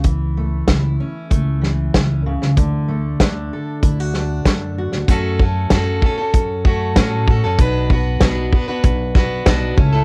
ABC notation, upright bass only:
X:1
M:4/4
L:1/16
Q:1/4=96
K:Bdor
V:1 name="Upright bass" clef=bass
C,,4 C,,2 z2 C,,4 C,,3 C,, | D,,4 D,,2 z2 D,,4 F,,3 D,, | F,,4 F,,2 z2 F,,4 A,,3 F,, | B,,,4 B,,,2 z2 B,,,4 B,,,2 C,,2 |]